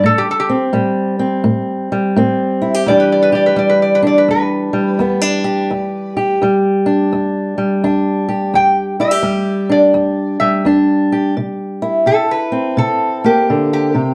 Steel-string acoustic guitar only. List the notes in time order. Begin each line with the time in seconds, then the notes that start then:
0.03 A2
0.50 C4
0.73 A2 G3
1.19 C4
1.44 A2
1.92 G3
2.16 A2 C4
2.62 E4
2.74 G4
2.86 E2 E3 G3 D4 G4
3.32 G4
3.56 E2 G3
4.02 D4
4.28 E2
4.73 G3
4.99 E2 B3
5.21 D4
5.44 G4
5.71 E2
6.17 G4
6.42 E2 G3
6.86 D4
7.13 E2
7.58 G3
7.84 E2 D4
8.29 G4
8.54 E2
9.00 E4
9.11 G4
9.22 E2 G3
9.69 D4
9.94 E2
10.41 G3
10.65 E2 D4
11.12 G4
11.37 C3
11.82 E4
12.06 C3
12.52 C4
12.77 C3
13.24 A#3
13.50 D3
13.94 C3